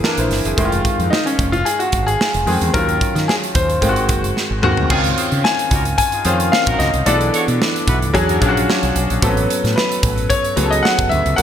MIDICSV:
0, 0, Header, 1, 6, 480
1, 0, Start_track
1, 0, Key_signature, -5, "major"
1, 0, Tempo, 540054
1, 513, Time_signature, 4, 2, 24, 8
1, 10150, End_track
2, 0, Start_track
2, 0, Title_t, "Grand piano"
2, 0, Program_c, 0, 0
2, 981, Note_on_c, 0, 63, 83
2, 1120, Note_on_c, 0, 61, 74
2, 1121, Note_off_c, 0, 63, 0
2, 1354, Note_on_c, 0, 65, 89
2, 1369, Note_off_c, 0, 61, 0
2, 1469, Note_on_c, 0, 68, 92
2, 1473, Note_off_c, 0, 65, 0
2, 1592, Note_off_c, 0, 68, 0
2, 1594, Note_on_c, 0, 66, 77
2, 1836, Note_on_c, 0, 68, 93
2, 1847, Note_off_c, 0, 66, 0
2, 2396, Note_off_c, 0, 68, 0
2, 2432, Note_on_c, 0, 70, 93
2, 2916, Note_on_c, 0, 68, 87
2, 2929, Note_off_c, 0, 70, 0
2, 2970, Note_off_c, 0, 68, 0
2, 3158, Note_on_c, 0, 72, 82
2, 3604, Note_off_c, 0, 72, 0
2, 4837, Note_on_c, 0, 80, 98
2, 5284, Note_off_c, 0, 80, 0
2, 5313, Note_on_c, 0, 80, 105
2, 5795, Note_on_c, 0, 77, 90
2, 5810, Note_off_c, 0, 80, 0
2, 6032, Note_on_c, 0, 75, 80
2, 6044, Note_off_c, 0, 77, 0
2, 6277, Note_on_c, 0, 74, 82
2, 6283, Note_off_c, 0, 75, 0
2, 7202, Note_off_c, 0, 74, 0
2, 8673, Note_on_c, 0, 71, 75
2, 9151, Note_on_c, 0, 73, 91
2, 9169, Note_off_c, 0, 71, 0
2, 9515, Note_on_c, 0, 75, 86
2, 9534, Note_off_c, 0, 73, 0
2, 9622, Note_on_c, 0, 78, 88
2, 9634, Note_off_c, 0, 75, 0
2, 9852, Note_off_c, 0, 78, 0
2, 9860, Note_on_c, 0, 76, 90
2, 10091, Note_off_c, 0, 76, 0
2, 10100, Note_on_c, 0, 78, 92
2, 10150, Note_off_c, 0, 78, 0
2, 10150, End_track
3, 0, Start_track
3, 0, Title_t, "Horn section"
3, 0, Program_c, 1, 61
3, 4360, Note_on_c, 1, 63, 101
3, 4361, Note_on_c, 1, 68, 115
3, 4363, Note_on_c, 1, 65, 101
3, 4463, Note_off_c, 1, 63, 0
3, 4463, Note_off_c, 1, 68, 0
3, 4465, Note_off_c, 1, 65, 0
3, 4599, Note_on_c, 1, 72, 83
3, 4601, Note_on_c, 1, 68, 79
3, 4602, Note_on_c, 1, 65, 80
3, 4702, Note_off_c, 1, 72, 0
3, 4704, Note_off_c, 1, 65, 0
3, 4704, Note_off_c, 1, 68, 0
3, 5082, Note_on_c, 1, 63, 70
3, 5085, Note_on_c, 1, 66, 75
3, 5085, Note_on_c, 1, 70, 83
3, 5184, Note_off_c, 1, 63, 0
3, 5186, Note_off_c, 1, 66, 0
3, 5186, Note_off_c, 1, 70, 0
3, 5453, Note_on_c, 1, 63, 74
3, 5455, Note_on_c, 1, 68, 74
3, 5456, Note_on_c, 1, 65, 76
3, 5539, Note_off_c, 1, 63, 0
3, 5540, Note_off_c, 1, 68, 0
3, 5541, Note_off_c, 1, 65, 0
3, 5561, Note_on_c, 1, 68, 81
3, 5565, Note_on_c, 1, 65, 81
3, 5565, Note_on_c, 1, 72, 90
3, 5663, Note_off_c, 1, 68, 0
3, 5666, Note_off_c, 1, 65, 0
3, 5666, Note_off_c, 1, 72, 0
3, 5928, Note_on_c, 1, 70, 108
3, 5930, Note_on_c, 1, 63, 92
3, 5932, Note_on_c, 1, 66, 103
3, 6120, Note_off_c, 1, 70, 0
3, 6121, Note_off_c, 1, 63, 0
3, 6123, Note_off_c, 1, 66, 0
3, 6275, Note_on_c, 1, 66, 90
3, 6277, Note_on_c, 1, 69, 99
3, 6278, Note_on_c, 1, 64, 89
3, 6380, Note_off_c, 1, 66, 0
3, 6381, Note_off_c, 1, 69, 0
3, 6382, Note_off_c, 1, 64, 0
3, 6519, Note_on_c, 1, 69, 87
3, 6520, Note_on_c, 1, 73, 99
3, 6521, Note_on_c, 1, 66, 94
3, 6622, Note_off_c, 1, 69, 0
3, 6623, Note_off_c, 1, 66, 0
3, 6623, Note_off_c, 1, 73, 0
3, 7005, Note_on_c, 1, 66, 76
3, 7007, Note_on_c, 1, 71, 83
3, 7008, Note_on_c, 1, 64, 74
3, 7106, Note_off_c, 1, 66, 0
3, 7107, Note_off_c, 1, 71, 0
3, 7108, Note_off_c, 1, 64, 0
3, 7373, Note_on_c, 1, 70, 83
3, 7375, Note_on_c, 1, 66, 83
3, 7376, Note_on_c, 1, 62, 76
3, 7459, Note_off_c, 1, 70, 0
3, 7461, Note_off_c, 1, 62, 0
3, 7461, Note_off_c, 1, 66, 0
3, 7483, Note_on_c, 1, 56, 84
3, 7483, Note_on_c, 1, 62, 82
3, 7486, Note_on_c, 1, 68, 89
3, 7585, Note_off_c, 1, 56, 0
3, 7585, Note_off_c, 1, 62, 0
3, 7586, Note_off_c, 1, 68, 0
3, 10150, End_track
4, 0, Start_track
4, 0, Title_t, "Grand piano"
4, 0, Program_c, 2, 0
4, 0, Control_c, 2, 64, 127
4, 0, Note_on_c, 2, 52, 76
4, 0, Note_on_c, 2, 58, 77
4, 0, Note_on_c, 2, 60, 65
4, 0, Note_on_c, 2, 68, 84
4, 35, Note_on_c, 2, 70, 72
4, 42, Note_on_c, 2, 62, 56
4, 134, Note_off_c, 2, 52, 0
4, 137, Note_off_c, 2, 58, 0
4, 157, Note_off_c, 2, 70, 0
4, 160, Note_off_c, 2, 62, 0
4, 165, Note_on_c, 2, 72, 59
4, 172, Note_on_c, 2, 64, 48
4, 392, Note_off_c, 2, 72, 0
4, 396, Note_off_c, 2, 64, 0
4, 406, Note_off_c, 2, 68, 0
4, 406, Note_on_c, 2, 68, 60
4, 410, Note_off_c, 2, 60, 0
4, 410, Note_on_c, 2, 60, 47
4, 502, Note_off_c, 2, 60, 0
4, 505, Note_on_c, 2, 51, 82
4, 511, Note_on_c, 2, 56, 76
4, 515, Note_on_c, 2, 60, 73
4, 517, Note_on_c, 2, 64, 75
4, 523, Control_c, 2, 64, 0
4, 574, Note_on_c, 2, 65, 90
4, 577, Note_off_c, 2, 64, 0
4, 633, Note_off_c, 2, 68, 0
4, 674, Control_c, 2, 64, 127
4, 1255, Note_off_c, 2, 51, 0
4, 1258, Note_off_c, 2, 56, 0
4, 1260, Note_off_c, 2, 60, 0
4, 1290, Note_off_c, 2, 65, 0
4, 2190, Note_on_c, 2, 51, 74
4, 2193, Note_on_c, 2, 56, 65
4, 2195, Note_on_c, 2, 60, 70
4, 2200, Note_on_c, 2, 68, 78
4, 2383, Note_off_c, 2, 51, 0
4, 2385, Note_off_c, 2, 56, 0
4, 2386, Note_off_c, 2, 60, 0
4, 2388, Note_off_c, 2, 68, 0
4, 2434, Note_on_c, 2, 51, 76
4, 2435, Note_on_c, 2, 54, 64
4, 2441, Note_on_c, 2, 61, 65
4, 2443, Note_on_c, 2, 65, 74
4, 2447, Control_c, 2, 64, 0
4, 2578, Control_c, 2, 64, 127
4, 3181, Note_off_c, 2, 51, 0
4, 3182, Note_off_c, 2, 54, 0
4, 3184, Note_off_c, 2, 61, 0
4, 3185, Note_off_c, 2, 65, 0
4, 3387, Note_on_c, 2, 51, 80
4, 3391, Note_on_c, 2, 56, 69
4, 3394, Note_on_c, 2, 60, 73
4, 3400, Note_on_c, 2, 65, 70
4, 3410, Control_c, 2, 64, 0
4, 3456, Note_on_c, 2, 66, 86
4, 3461, Note_off_c, 2, 65, 0
4, 3581, Control_c, 2, 64, 127
4, 3976, Note_off_c, 2, 51, 0
4, 3978, Note_off_c, 2, 56, 0
4, 3980, Note_off_c, 2, 60, 0
4, 4011, Note_off_c, 2, 66, 0
4, 4108, Note_on_c, 2, 51, 90
4, 4115, Note_on_c, 2, 56, 73
4, 4115, Note_on_c, 2, 60, 80
4, 4121, Note_on_c, 2, 66, 104
4, 4303, Note_off_c, 2, 51, 0
4, 4306, Note_off_c, 2, 56, 0
4, 4307, Note_off_c, 2, 60, 0
4, 4310, Note_off_c, 2, 66, 0
4, 4353, Note_on_c, 2, 51, 87
4, 4357, Note_on_c, 2, 60, 87
4, 4359, Note_on_c, 2, 61, 76
4, 4364, Note_on_c, 2, 65, 99
4, 4371, Control_c, 2, 64, 0
4, 4515, Control_c, 2, 64, 127
4, 5101, Note_off_c, 2, 51, 0
4, 5103, Note_off_c, 2, 60, 0
4, 5104, Note_off_c, 2, 61, 0
4, 5106, Note_off_c, 2, 65, 0
4, 5554, Note_on_c, 2, 51, 79
4, 5554, Note_on_c, 2, 60, 70
4, 5561, Note_on_c, 2, 61, 67
4, 5563, Note_on_c, 2, 65, 88
4, 6120, Note_off_c, 2, 51, 0
4, 6120, Note_off_c, 2, 60, 0
4, 6124, Note_off_c, 2, 61, 0
4, 6124, Note_off_c, 2, 65, 0
4, 6278, Note_on_c, 2, 52, 69
4, 6281, Note_on_c, 2, 59, 67
4, 6284, Note_on_c, 2, 62, 71
4, 6287, Note_on_c, 2, 68, 64
4, 6292, Control_c, 2, 64, 0
4, 6344, Note_on_c, 2, 69, 89
4, 6345, Note_off_c, 2, 68, 0
4, 6416, Control_c, 2, 64, 127
4, 7023, Note_off_c, 2, 52, 0
4, 7025, Note_off_c, 2, 59, 0
4, 7026, Note_off_c, 2, 62, 0
4, 7056, Note_off_c, 2, 69, 0
4, 7231, Note_on_c, 2, 54, 108
4, 7236, Note_on_c, 2, 61, 84
4, 7237, Note_on_c, 2, 62, 92
4, 7241, Note_on_c, 2, 68, 111
4, 7252, Control_c, 2, 64, 0
4, 7427, Control_c, 2, 64, 127
4, 7431, Note_off_c, 2, 54, 0
4, 7433, Note_off_c, 2, 61, 0
4, 7433, Note_off_c, 2, 62, 0
4, 7435, Note_off_c, 2, 68, 0
4, 7472, Note_on_c, 2, 54, 82
4, 7476, Note_on_c, 2, 61, 87
4, 7478, Note_on_c, 2, 62, 80
4, 7484, Note_on_c, 2, 65, 83
4, 7542, Note_on_c, 2, 66, 94
4, 7543, Note_off_c, 2, 65, 0
4, 8039, Note_off_c, 2, 54, 0
4, 8041, Note_off_c, 2, 61, 0
4, 8042, Note_off_c, 2, 62, 0
4, 8073, Note_off_c, 2, 66, 0
4, 8192, Note_on_c, 2, 54, 78
4, 8196, Note_on_c, 2, 59, 75
4, 8200, Note_on_c, 2, 60, 63
4, 8203, Note_on_c, 2, 69, 87
4, 8210, Control_c, 2, 64, 0
4, 8258, Note_on_c, 2, 61, 75
4, 8261, Note_off_c, 2, 60, 0
4, 8381, Control_c, 2, 64, 127
4, 8940, Note_off_c, 2, 54, 0
4, 8942, Note_off_c, 2, 59, 0
4, 8945, Note_off_c, 2, 69, 0
4, 8972, Note_off_c, 2, 61, 0
4, 9388, Note_on_c, 2, 54, 70
4, 9390, Note_on_c, 2, 59, 72
4, 9394, Note_on_c, 2, 61, 66
4, 9397, Note_on_c, 2, 68, 66
4, 9454, Note_on_c, 2, 69, 81
4, 9459, Note_off_c, 2, 68, 0
4, 9955, Note_off_c, 2, 54, 0
4, 9956, Note_off_c, 2, 59, 0
4, 9959, Note_off_c, 2, 61, 0
4, 9989, Note_off_c, 2, 69, 0
4, 10106, Note_on_c, 2, 54, 76
4, 10111, Note_on_c, 2, 60, 66
4, 10114, Note_on_c, 2, 62, 53
4, 10117, Note_on_c, 2, 70, 70
4, 10128, Control_c, 2, 64, 0
4, 10150, Note_off_c, 2, 54, 0
4, 10150, Note_off_c, 2, 60, 0
4, 10150, Note_off_c, 2, 62, 0
4, 10150, Note_off_c, 2, 70, 0
4, 10150, End_track
5, 0, Start_track
5, 0, Title_t, "Fretless electric bass"
5, 0, Program_c, 3, 35
5, 159, Note_on_c, 3, 34, 96
5, 254, Note_off_c, 3, 34, 0
5, 271, Note_on_c, 3, 31, 88
5, 382, Note_off_c, 3, 31, 0
5, 401, Note_on_c, 3, 30, 76
5, 495, Note_off_c, 3, 30, 0
5, 513, Note_on_c, 3, 29, 87
5, 717, Note_off_c, 3, 29, 0
5, 884, Note_on_c, 3, 41, 90
5, 978, Note_off_c, 3, 41, 0
5, 1233, Note_on_c, 3, 29, 109
5, 1438, Note_off_c, 3, 29, 0
5, 1717, Note_on_c, 3, 32, 94
5, 1920, Note_off_c, 3, 32, 0
5, 2085, Note_on_c, 3, 29, 84
5, 2179, Note_off_c, 3, 29, 0
5, 2192, Note_on_c, 3, 41, 93
5, 2304, Note_off_c, 3, 41, 0
5, 2325, Note_on_c, 3, 40, 93
5, 2419, Note_off_c, 3, 40, 0
5, 2437, Note_on_c, 3, 39, 107
5, 2641, Note_off_c, 3, 39, 0
5, 2802, Note_on_c, 3, 51, 105
5, 2897, Note_off_c, 3, 51, 0
5, 3157, Note_on_c, 3, 39, 98
5, 3361, Note_off_c, 3, 39, 0
5, 3396, Note_on_c, 3, 32, 96
5, 3635, Note_off_c, 3, 32, 0
5, 3635, Note_on_c, 3, 30, 90
5, 3840, Note_off_c, 3, 30, 0
5, 4006, Note_on_c, 3, 32, 79
5, 4100, Note_off_c, 3, 32, 0
5, 4117, Note_on_c, 3, 39, 93
5, 4227, Note_off_c, 3, 39, 0
5, 4245, Note_on_c, 3, 38, 82
5, 4340, Note_off_c, 3, 38, 0
5, 4356, Note_on_c, 3, 37, 108
5, 4561, Note_off_c, 3, 37, 0
5, 4729, Note_on_c, 3, 49, 88
5, 4822, Note_off_c, 3, 49, 0
5, 5077, Note_on_c, 3, 37, 105
5, 5282, Note_off_c, 3, 37, 0
5, 5558, Note_on_c, 3, 41, 91
5, 5762, Note_off_c, 3, 41, 0
5, 5929, Note_on_c, 3, 34, 83
5, 6022, Note_off_c, 3, 34, 0
5, 6034, Note_on_c, 3, 37, 98
5, 6146, Note_off_c, 3, 37, 0
5, 6166, Note_on_c, 3, 36, 91
5, 6261, Note_off_c, 3, 36, 0
5, 6277, Note_on_c, 3, 35, 102
5, 6482, Note_off_c, 3, 35, 0
5, 6648, Note_on_c, 3, 47, 100
5, 6742, Note_off_c, 3, 47, 0
5, 7001, Note_on_c, 3, 35, 101
5, 7240, Note_off_c, 3, 35, 0
5, 7240, Note_on_c, 3, 40, 98
5, 7443, Note_off_c, 3, 40, 0
5, 7481, Note_on_c, 3, 34, 96
5, 7684, Note_off_c, 3, 34, 0
5, 7850, Note_on_c, 3, 35, 90
5, 7943, Note_off_c, 3, 35, 0
5, 7961, Note_on_c, 3, 35, 93
5, 8070, Note_off_c, 3, 35, 0
5, 8093, Note_on_c, 3, 34, 90
5, 8184, Note_off_c, 3, 34, 0
5, 8199, Note_on_c, 3, 33, 109
5, 8402, Note_off_c, 3, 33, 0
5, 8569, Note_on_c, 3, 45, 89
5, 8662, Note_off_c, 3, 45, 0
5, 8915, Note_on_c, 3, 33, 93
5, 9120, Note_off_c, 3, 33, 0
5, 9398, Note_on_c, 3, 37, 107
5, 9601, Note_off_c, 3, 37, 0
5, 9766, Note_on_c, 3, 30, 106
5, 9860, Note_off_c, 3, 30, 0
5, 9877, Note_on_c, 3, 38, 91
5, 9986, Note_off_c, 3, 38, 0
5, 10005, Note_on_c, 3, 37, 98
5, 10099, Note_off_c, 3, 37, 0
5, 10117, Note_on_c, 3, 36, 106
5, 10150, Note_off_c, 3, 36, 0
5, 10150, End_track
6, 0, Start_track
6, 0, Title_t, "Drums"
6, 35, Note_on_c, 9, 38, 91
6, 124, Note_off_c, 9, 38, 0
6, 155, Note_on_c, 9, 42, 56
6, 244, Note_off_c, 9, 42, 0
6, 273, Note_on_c, 9, 46, 68
6, 279, Note_on_c, 9, 38, 31
6, 362, Note_off_c, 9, 46, 0
6, 368, Note_off_c, 9, 38, 0
6, 402, Note_on_c, 9, 42, 54
6, 491, Note_off_c, 9, 42, 0
6, 513, Note_on_c, 9, 36, 110
6, 516, Note_on_c, 9, 42, 85
6, 602, Note_off_c, 9, 36, 0
6, 604, Note_off_c, 9, 42, 0
6, 643, Note_on_c, 9, 42, 51
6, 731, Note_off_c, 9, 42, 0
6, 754, Note_on_c, 9, 36, 87
6, 759, Note_on_c, 9, 42, 72
6, 843, Note_off_c, 9, 36, 0
6, 848, Note_off_c, 9, 42, 0
6, 886, Note_on_c, 9, 42, 47
6, 975, Note_off_c, 9, 42, 0
6, 1004, Note_on_c, 9, 38, 105
6, 1093, Note_off_c, 9, 38, 0
6, 1129, Note_on_c, 9, 42, 55
6, 1218, Note_off_c, 9, 42, 0
6, 1235, Note_on_c, 9, 36, 97
6, 1235, Note_on_c, 9, 42, 78
6, 1324, Note_off_c, 9, 36, 0
6, 1324, Note_off_c, 9, 42, 0
6, 1362, Note_on_c, 9, 42, 43
6, 1451, Note_off_c, 9, 42, 0
6, 1478, Note_on_c, 9, 42, 83
6, 1567, Note_off_c, 9, 42, 0
6, 1600, Note_on_c, 9, 42, 48
6, 1689, Note_off_c, 9, 42, 0
6, 1709, Note_on_c, 9, 42, 80
6, 1715, Note_on_c, 9, 36, 91
6, 1798, Note_off_c, 9, 42, 0
6, 1804, Note_off_c, 9, 36, 0
6, 1847, Note_on_c, 9, 42, 55
6, 1936, Note_off_c, 9, 42, 0
6, 1964, Note_on_c, 9, 38, 108
6, 2052, Note_off_c, 9, 38, 0
6, 2082, Note_on_c, 9, 42, 54
6, 2171, Note_off_c, 9, 42, 0
6, 2197, Note_on_c, 9, 46, 64
6, 2286, Note_off_c, 9, 46, 0
6, 2324, Note_on_c, 9, 42, 54
6, 2413, Note_off_c, 9, 42, 0
6, 2437, Note_on_c, 9, 36, 110
6, 2437, Note_on_c, 9, 42, 81
6, 2526, Note_off_c, 9, 36, 0
6, 2526, Note_off_c, 9, 42, 0
6, 2566, Note_on_c, 9, 42, 51
6, 2655, Note_off_c, 9, 42, 0
6, 2677, Note_on_c, 9, 36, 95
6, 2684, Note_on_c, 9, 42, 73
6, 2766, Note_off_c, 9, 36, 0
6, 2773, Note_off_c, 9, 42, 0
6, 2810, Note_on_c, 9, 42, 47
6, 2818, Note_on_c, 9, 38, 35
6, 2899, Note_off_c, 9, 42, 0
6, 2907, Note_off_c, 9, 38, 0
6, 2927, Note_on_c, 9, 38, 115
6, 3016, Note_off_c, 9, 38, 0
6, 3054, Note_on_c, 9, 42, 57
6, 3143, Note_off_c, 9, 42, 0
6, 3154, Note_on_c, 9, 42, 85
6, 3157, Note_on_c, 9, 36, 103
6, 3243, Note_off_c, 9, 42, 0
6, 3245, Note_off_c, 9, 36, 0
6, 3284, Note_on_c, 9, 42, 51
6, 3373, Note_off_c, 9, 42, 0
6, 3396, Note_on_c, 9, 36, 78
6, 3396, Note_on_c, 9, 42, 81
6, 3485, Note_off_c, 9, 36, 0
6, 3485, Note_off_c, 9, 42, 0
6, 3522, Note_on_c, 9, 42, 53
6, 3611, Note_off_c, 9, 42, 0
6, 3633, Note_on_c, 9, 42, 86
6, 3637, Note_on_c, 9, 36, 94
6, 3721, Note_off_c, 9, 42, 0
6, 3726, Note_off_c, 9, 36, 0
6, 3770, Note_on_c, 9, 42, 56
6, 3859, Note_off_c, 9, 42, 0
6, 3884, Note_on_c, 9, 38, 56
6, 3973, Note_off_c, 9, 38, 0
6, 4115, Note_on_c, 9, 45, 98
6, 4204, Note_off_c, 9, 45, 0
6, 4243, Note_on_c, 9, 43, 85
6, 4332, Note_off_c, 9, 43, 0
6, 4355, Note_on_c, 9, 49, 95
6, 4357, Note_on_c, 9, 36, 119
6, 4444, Note_off_c, 9, 49, 0
6, 4446, Note_off_c, 9, 36, 0
6, 4482, Note_on_c, 9, 42, 52
6, 4571, Note_off_c, 9, 42, 0
6, 4601, Note_on_c, 9, 42, 82
6, 4690, Note_off_c, 9, 42, 0
6, 4726, Note_on_c, 9, 42, 44
6, 4815, Note_off_c, 9, 42, 0
6, 4843, Note_on_c, 9, 38, 121
6, 4932, Note_off_c, 9, 38, 0
6, 4970, Note_on_c, 9, 42, 61
6, 5059, Note_off_c, 9, 42, 0
6, 5075, Note_on_c, 9, 42, 81
6, 5077, Note_on_c, 9, 36, 89
6, 5164, Note_off_c, 9, 42, 0
6, 5166, Note_off_c, 9, 36, 0
6, 5203, Note_on_c, 9, 42, 47
6, 5291, Note_off_c, 9, 42, 0
6, 5317, Note_on_c, 9, 42, 87
6, 5318, Note_on_c, 9, 36, 70
6, 5406, Note_off_c, 9, 36, 0
6, 5406, Note_off_c, 9, 42, 0
6, 5441, Note_on_c, 9, 42, 51
6, 5530, Note_off_c, 9, 42, 0
6, 5552, Note_on_c, 9, 42, 83
6, 5641, Note_off_c, 9, 42, 0
6, 5687, Note_on_c, 9, 42, 59
6, 5776, Note_off_c, 9, 42, 0
6, 5805, Note_on_c, 9, 38, 109
6, 5894, Note_off_c, 9, 38, 0
6, 5923, Note_on_c, 9, 42, 57
6, 5929, Note_on_c, 9, 36, 105
6, 6012, Note_off_c, 9, 42, 0
6, 6018, Note_off_c, 9, 36, 0
6, 6041, Note_on_c, 9, 42, 62
6, 6047, Note_on_c, 9, 38, 35
6, 6130, Note_off_c, 9, 42, 0
6, 6136, Note_off_c, 9, 38, 0
6, 6165, Note_on_c, 9, 42, 48
6, 6254, Note_off_c, 9, 42, 0
6, 6278, Note_on_c, 9, 42, 97
6, 6367, Note_off_c, 9, 42, 0
6, 6406, Note_on_c, 9, 42, 50
6, 6495, Note_off_c, 9, 42, 0
6, 6523, Note_on_c, 9, 42, 80
6, 6612, Note_off_c, 9, 42, 0
6, 6650, Note_on_c, 9, 42, 45
6, 6739, Note_off_c, 9, 42, 0
6, 6770, Note_on_c, 9, 38, 120
6, 6859, Note_off_c, 9, 38, 0
6, 6896, Note_on_c, 9, 42, 56
6, 6985, Note_off_c, 9, 42, 0
6, 7000, Note_on_c, 9, 36, 102
6, 7000, Note_on_c, 9, 42, 78
6, 7089, Note_off_c, 9, 36, 0
6, 7089, Note_off_c, 9, 42, 0
6, 7132, Note_on_c, 9, 42, 54
6, 7221, Note_off_c, 9, 42, 0
6, 7241, Note_on_c, 9, 36, 78
6, 7244, Note_on_c, 9, 42, 80
6, 7330, Note_off_c, 9, 36, 0
6, 7333, Note_off_c, 9, 42, 0
6, 7370, Note_on_c, 9, 42, 51
6, 7459, Note_off_c, 9, 42, 0
6, 7481, Note_on_c, 9, 36, 100
6, 7482, Note_on_c, 9, 42, 76
6, 7570, Note_off_c, 9, 36, 0
6, 7571, Note_off_c, 9, 42, 0
6, 7619, Note_on_c, 9, 42, 62
6, 7708, Note_off_c, 9, 42, 0
6, 7729, Note_on_c, 9, 38, 94
6, 7818, Note_off_c, 9, 38, 0
6, 7847, Note_on_c, 9, 42, 51
6, 7936, Note_off_c, 9, 42, 0
6, 7961, Note_on_c, 9, 42, 69
6, 8050, Note_off_c, 9, 42, 0
6, 8090, Note_on_c, 9, 42, 54
6, 8179, Note_off_c, 9, 42, 0
6, 8199, Note_on_c, 9, 36, 115
6, 8200, Note_on_c, 9, 42, 91
6, 8288, Note_off_c, 9, 36, 0
6, 8289, Note_off_c, 9, 42, 0
6, 8329, Note_on_c, 9, 42, 51
6, 8418, Note_off_c, 9, 42, 0
6, 8447, Note_on_c, 9, 42, 80
6, 8536, Note_off_c, 9, 42, 0
6, 8575, Note_on_c, 9, 42, 49
6, 8583, Note_on_c, 9, 38, 31
6, 8663, Note_off_c, 9, 42, 0
6, 8672, Note_off_c, 9, 38, 0
6, 8690, Note_on_c, 9, 38, 120
6, 8779, Note_off_c, 9, 38, 0
6, 8814, Note_on_c, 9, 42, 57
6, 8903, Note_off_c, 9, 42, 0
6, 8915, Note_on_c, 9, 42, 89
6, 8916, Note_on_c, 9, 36, 98
6, 9004, Note_off_c, 9, 42, 0
6, 9005, Note_off_c, 9, 36, 0
6, 9045, Note_on_c, 9, 42, 50
6, 9134, Note_off_c, 9, 42, 0
6, 9156, Note_on_c, 9, 36, 81
6, 9157, Note_on_c, 9, 42, 90
6, 9245, Note_off_c, 9, 36, 0
6, 9246, Note_off_c, 9, 42, 0
6, 9284, Note_on_c, 9, 42, 50
6, 9373, Note_off_c, 9, 42, 0
6, 9395, Note_on_c, 9, 42, 86
6, 9483, Note_off_c, 9, 42, 0
6, 9532, Note_on_c, 9, 42, 57
6, 9621, Note_off_c, 9, 42, 0
6, 9646, Note_on_c, 9, 38, 109
6, 9735, Note_off_c, 9, 38, 0
6, 9764, Note_on_c, 9, 42, 54
6, 9766, Note_on_c, 9, 36, 102
6, 9853, Note_off_c, 9, 42, 0
6, 9855, Note_off_c, 9, 36, 0
6, 9879, Note_on_c, 9, 42, 70
6, 9968, Note_off_c, 9, 42, 0
6, 10006, Note_on_c, 9, 42, 51
6, 10095, Note_off_c, 9, 42, 0
6, 10116, Note_on_c, 9, 42, 99
6, 10150, Note_off_c, 9, 42, 0
6, 10150, End_track
0, 0, End_of_file